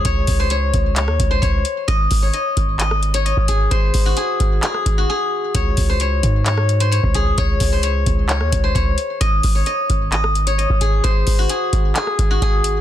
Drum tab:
HH |x-o-x-x-x-x-x-x-|x-o-x-x-x-xxx-x-|x-o-x-x-x-x-----|x-o-x-x-x-xxx-x-|
CP |--------x-------|--------x-------|--------x-------|--------x-------|
SD |---------r------|---------r------|--------rr------|---------r------|
BD |o-o---o---o-o---|o-o---o------oo-|o-o---o---o-----|o-o---o------oo-|

HH |x-o-x-x-x-x-x-x-|x-o-x-x-x-xxx-x-|x-o-x-x-x-x-x-x-|
CP |--------x-------|--------x-------|--------x-------|
SD |---------r------|---------r------|--------rr------|
BD |o-o---o---o-o---|o-o---o------oo-|o-o---o---o-o---|